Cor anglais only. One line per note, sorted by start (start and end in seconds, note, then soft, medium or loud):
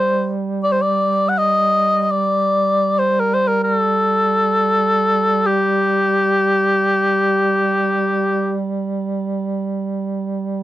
0.00 0.32 C5 medium
0.64 0.74 D5 medium
0.72 0.83 C5 medium
0.82 1.30 D5 medium
1.29 1.40 F#5 medium
1.38 2.03 D#5 medium
2.03 2.13 D#5 medium
2.11 3.01 D5 medium
2.99 3.21 C5 medium
3.20 3.36 A#4 medium
3.34 3.49 C5 medium
3.48 3.62 A#4 medium
3.64 3.76 A#4 medium
3.76 5.48 A4 medium
5.46 8.63 G4 medium